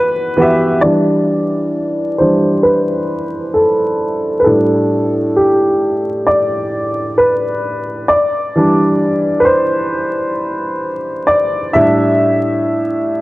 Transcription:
upright piano
Already playing: E3 B3 F#4 G4 B4 D5
0.36 E3 B3 F#4 G4
0.42 E5
0.81 E3 G3 D4 D5
2.18 E3 G3 D4 C5
2.63 B4
3.54 A4
4.40 B4
4.44 A2 G3 D4 A4
5.36 G4
6.27 D5
7.18 B4
8.08 D5
8.56 E3 G3 D4
9.40 B4
9.45 C5
11.27 D5
11.73 A2 G3 D4 E5

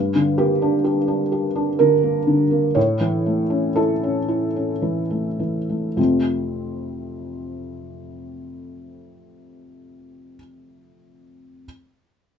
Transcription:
felt piano
Already playing: G2
0.15 D3
0.38 A#3 G4
0.62 D4
0.84 G4
1.08 D4
1.32 G4
1.55 D4
1.79 D3 A#4
2.03 A#3
2.27 D3
2.51 A#3
2.75 A2 C#5
3.01 E3
3.26 A3
3.50 C#4
3.76 E4 A4
4.03 C#4
4.28 E4
4.56 C#4
4.82 E3
5.10 A3
5.39 E3
5.70 A3
5.97 F2 C3 A3 C4 F4

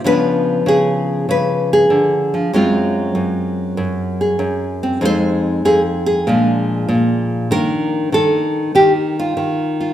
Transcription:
nylon-string guitar
0.04 C#3 F3 B3 D4 B4
0.66 C#3 G#4
1.29 C#3 B4
1.73 G#4
1.90 D3
2.34 F3
2.53 F#2 F#3 G#3 C4 F4
3.15 F#2
3.77 F#2
4.21 G#4
4.39 F#2
4.83 C4
5.01 F2 G#3 C4 D#4
5.05 C5
5.65 F2 G#4
6.06 G#4
6.27 A#2 F3 G#3 D4
6.88 A#2
7.51 D#3 A#3 D4 A#4
8.12 D#3 A4
8.75 D#3 G4
9.19 F4
9.37 D#3
9.80 F4

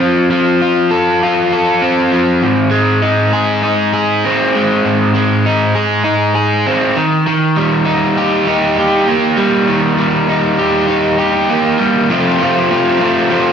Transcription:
overdriven electric guitar
Already playing: C4 F4 A4
0.00 F3
0.31 F3
0.62 F4
0.91 A4
1.23 F4
1.53 A4
1.82 C4
2.12 F3
2.42 G#2
2.71 G#3
3.02 D#4
3.33 G#4
3.63 D#4
3.94 G#4
4.25 C4
4.56 G#3
4.85 G#2
5.14 G#3
5.46 D#4
5.75 G#4
6.04 D#4
6.35 G#4
6.67 C4
6.97 D#3
7.27 D#3
7.57 G3
7.86 D#4
8.17 G4
8.47 D#4
8.78 G4
9.08 A#3
9.37 G3
9.68 D#3
9.98 G3
10.29 D#4
10.59 G4
10.88 D#4
11.19 G4
11.50 A#3
11.79 G3
12.10 F2 C3 F3 A3 C4 F4
12.41 F2 C3 F3 A3 C4 F4
12.70 F2 C3 F3 A3 C4 F4
13.00 F2 C3 F3 A3 C4 F4
13.30 F2 C3 F3 A3 C4 F4

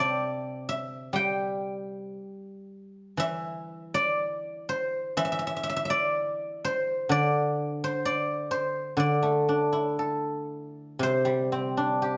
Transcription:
guzheng
Already playing: C3 G3 C5 E5 G5 A5 C6 D6
0.00 D5
0.69 E5
1.13 G3 G5
3.17 E3 E5
3.94 D5
4.69 C5
5.17 E3 E5
5.25 E5
5.32 E5
5.39 E5
5.47 E5
5.56 E5
5.63 E5
5.69 E5
5.76 E5
5.85 E5
5.90 D5
6.65 C5
7.09 D3 D5
7.84 C5
8.05 D5
8.51 C5
8.97 D3 D5
9.23 A3
9.49 D4
9.73 E4 C#5
9.93 C5
9.99 A4
10.99 C3 C5
11.25 G3
11.52 C4
11.77 D4
12.02 G4

